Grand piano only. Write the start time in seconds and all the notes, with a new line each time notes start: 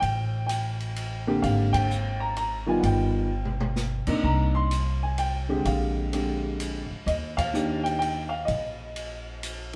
0.00 G5
0.46 G5
1.27 D3 A#3 C4 G4
1.42 F5
1.73 G5
2.20 A#5
2.37 A#5
2.66 D#3 G3 B3 F4 G#5
2.80 F#5
2.85 G5
4.07 A#3 C4 D4 D#4
4.24 A#5
4.55 C6
5.03 G#5
5.18 G5
5.49 D3 G#3 C4 G4
5.66 F5
6.12 D3 G#3 C4 G4
7.07 D#5
7.37 F5
7.53 D#3 A#3 D4 G4
7.84 G5
7.99 G5
8.29 F5
8.45 D#5